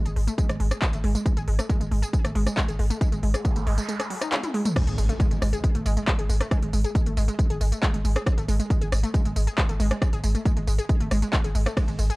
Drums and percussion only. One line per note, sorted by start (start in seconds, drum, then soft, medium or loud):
0.06 closed hi-hat medium
0.06 tambourine soft
0.16 open hi-hat medium
0.28 closed hi-hat medium
0.28 tambourine medium
0.38 kick loud
0.38 closed hi-hat medium
0.38 tambourine medium
0.49 cross-stick medium
0.49 closed hi-hat medium
0.49 tambourine soft
0.60 open hi-hat loud
0.71 cross-stick medium
0.71 closed hi-hat medium
0.71 tambourine medium
0.82 kick loud
0.82 clap loud
0.82 closed hi-hat medium
0.82 tambourine medium
0.93 closed hi-hat medium
0.93 tambourine soft
1.04 open hi-hat medium
1.15 closed hi-hat medium
1.15 tambourine medium
1.26 kick loud
1.26 closed hi-hat medium
1.26 tambourine medium
1.37 closed hi-hat medium
1.37 tambourine soft
1.48 open hi-hat loud
1.59 cross-stick medium
1.59 closed hi-hat medium
1.59 tambourine medium
1.69 kick loud
1.69 closed hi-hat medium
1.69 tambourine medium
1.81 closed hi-hat medium
1.81 tambourine soft
1.92 open hi-hat medium
2.03 closed hi-hat medium
2.03 tambourine medium
2.13 kick loud
2.13 closed hi-hat medium
2.13 tambourine medium
2.25 cross-stick medium
2.25 closed hi-hat medium
2.25 tambourine soft
2.35 open hi-hat loud
2.46 cross-stick medium
2.46 closed hi-hat medium
2.46 tambourine medium
2.57 kick loud
2.57 clap loud
2.57 closed hi-hat medium
2.57 tambourine medium
2.68 closed hi-hat medium
2.68 tambourine soft
2.79 open hi-hat loud
2.90 closed hi-hat medium
2.90 tambourine medium
3.01 kick loud
3.01 closed hi-hat medium
3.01 tambourine medium
3.12 closed hi-hat medium
3.12 tambourine soft
3.23 open hi-hat loud
3.34 cross-stick medium
3.34 closed hi-hat medium
3.34 tambourine medium
3.45 kick loud
3.45 closed hi-hat medium
3.45 tambourine medium
3.56 closed hi-hat medium
3.56 tambourine soft
3.67 open hi-hat medium
3.78 closed hi-hat medium
3.78 tambourine medium
3.89 closed hi-hat medium
3.89 tambourine medium
4.00 cross-stick medium
4.00 closed hi-hat medium
4.00 tambourine soft
4.10 open hi-hat loud
4.22 cross-stick medium
4.22 closed hi-hat medium
4.22 tambourine medium
4.32 clap loud
4.32 closed hi-hat medium
4.32 high tom medium
4.32 tambourine soft
4.43 closed hi-hat medium
4.43 high tom medium
4.43 tambourine soft
4.54 open hi-hat medium
4.65 closed hi-hat medium
4.65 mid tom medium
4.65 tambourine medium
4.76 kick loud
4.76 cross-stick medium
4.76 closed hi-hat medium
4.76 crash loud
4.76 tambourine soft
4.87 closed hi-hat medium
4.87 tambourine soft
4.98 open hi-hat loud
4.98 tambourine medium
5.09 closed hi-hat medium
5.09 tambourine soft
5.20 kick loud
5.20 closed hi-hat medium
5.20 tambourine soft
5.31 closed hi-hat medium
5.31 tambourine soft
5.42 cross-stick medium
5.42 open hi-hat medium
5.42 tambourine medium
5.53 closed hi-hat medium
5.53 tambourine soft
5.64 kick loud
5.64 closed hi-hat medium
5.64 tambourine soft
5.75 closed hi-hat medium
5.75 tambourine soft
5.86 open hi-hat loud
5.86 tambourine medium
5.97 closed hi-hat medium
5.97 tambourine soft
6.07 kick loud
6.07 clap loud
6.07 closed hi-hat medium
6.07 tambourine soft
6.19 closed hi-hat medium
6.19 tambourine soft
6.29 open hi-hat loud
6.29 tambourine medium
6.41 cross-stick medium
6.41 closed hi-hat medium
6.41 tambourine soft
6.51 kick loud
6.51 cross-stick medium
6.51 closed hi-hat medium
6.51 tambourine soft
6.63 closed hi-hat medium
6.63 tambourine soft
6.73 open hi-hat loud
6.73 tambourine medium
6.84 closed hi-hat medium
6.84 tambourine soft
6.95 kick loud
6.95 closed hi-hat medium
6.95 tambourine soft
7.06 closed hi-hat medium
7.06 tambourine soft
7.17 open hi-hat medium
7.17 tambourine medium
7.28 closed hi-hat medium
7.28 tambourine soft
7.39 kick loud
7.39 closed hi-hat medium
7.39 tambourine soft
7.50 closed hi-hat medium
7.50 tambourine soft
7.61 open hi-hat loud
7.61 tambourine medium
7.72 closed hi-hat medium
7.72 tambourine soft
7.83 kick loud
7.83 clap loud
7.83 closed hi-hat medium
7.83 tambourine soft
7.94 closed hi-hat medium
7.94 tambourine soft
8.05 open hi-hat loud
8.05 tambourine medium
8.16 cross-stick loud
8.16 closed hi-hat medium
8.16 tambourine soft
8.26 kick loud
8.26 cross-stick loud
8.26 closed hi-hat medium
8.26 tambourine soft
8.38 closed hi-hat medium
8.38 tambourine soft
8.49 open hi-hat loud
8.49 tambourine medium
8.60 closed hi-hat medium
8.60 tambourine soft
8.70 kick loud
8.70 closed hi-hat medium
8.70 tambourine soft
8.82 closed hi-hat medium
8.82 tambourine soft
8.92 cross-stick loud
8.92 open hi-hat loud
8.92 tambourine medium
9.04 closed hi-hat medium
9.04 tambourine soft
9.14 kick loud
9.14 closed hi-hat medium
9.14 tambourine soft
9.25 closed hi-hat medium
9.25 tambourine soft
9.36 open hi-hat loud
9.36 tambourine medium
9.47 closed hi-hat medium
9.47 tambourine soft
9.58 kick loud
9.58 clap loud
9.58 closed hi-hat medium
9.58 tambourine soft
9.69 closed hi-hat medium
9.69 tambourine soft
9.80 open hi-hat loud
9.80 tambourine medium
9.91 cross-stick loud
9.91 closed hi-hat medium
9.91 tambourine soft
10.02 kick loud
10.02 cross-stick loud
10.02 closed hi-hat medium
10.02 tambourine soft
10.13 closed hi-hat medium
10.13 tambourine soft
10.24 open hi-hat loud
10.24 tambourine medium
10.35 closed hi-hat medium
10.35 tambourine soft
10.45 kick loud
10.45 closed hi-hat medium
10.45 tambourine soft
10.57 closed hi-hat medium
10.57 tambourine soft
10.67 open hi-hat loud
10.67 tambourine medium
10.79 closed hi-hat medium
10.79 tambourine soft
10.89 kick loud
10.89 closed hi-hat medium
10.89 tambourine soft
11.01 closed hi-hat medium
11.01 tambourine soft
11.11 cross-stick medium
11.11 open hi-hat loud
11.11 tambourine medium
11.22 closed hi-hat medium
11.22 tambourine soft
11.33 kick loud
11.33 clap loud
11.33 closed hi-hat medium
11.33 tambourine soft
11.44 closed hi-hat medium
11.44 tambourine soft
11.55 open hi-hat loud
11.55 tambourine medium
11.66 cross-stick loud
11.66 closed hi-hat medium
11.66 tambourine soft
11.77 kick loud
11.77 cross-stick loud
11.77 closed hi-hat medium
11.77 ride medium
11.77 tambourine soft
11.88 closed hi-hat medium
11.88 tambourine soft
11.99 open hi-hat loud
11.99 tambourine medium
12.10 closed hi-hat medium
12.10 tambourine soft